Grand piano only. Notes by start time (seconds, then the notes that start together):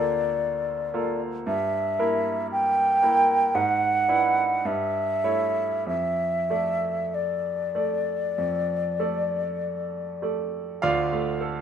Already playing: D2 A#3 F4 A4
0.94 A#3 F4 A4
1.47 G2
1.99 A#3 E4 A#4
3.02 A#3 E4 A#4
3.55 G#2
4.08 D4 E4 B4
4.65 G2
5.24 A3 E4 C#5
5.87 F2
6.50 A3 A4 D5
7.75 A3 A4 D5
8.38 F2
8.99 A3 A4 D5
10.22 A3 A4 D5
10.82 D2 F4 D5 F5
11.12 A3
11.41 A4